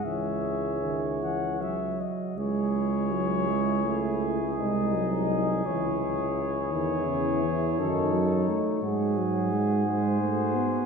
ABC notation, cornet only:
X:1
M:6/8
L:1/8
Q:3/8=55
K:C#m
V:1 name="Cornet"
e3 f e d | c6 | d3 c3- | c6- |
c2 z ^B3 |]